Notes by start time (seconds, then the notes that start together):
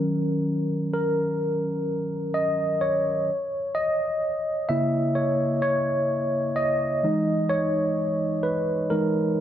Already playing: D#3 F#3 C#4 A#4
0.94 A#4
2.34 D#5
2.81 C#5
3.75 D#5
4.69 C#3 A#3 E4 E5
5.15 C#5
5.62 C#5
6.56 D#5
7.03 E3 G#3 D#4
7.50 C#5
8.43 B4
8.90 E3 G#3 D#4 A#4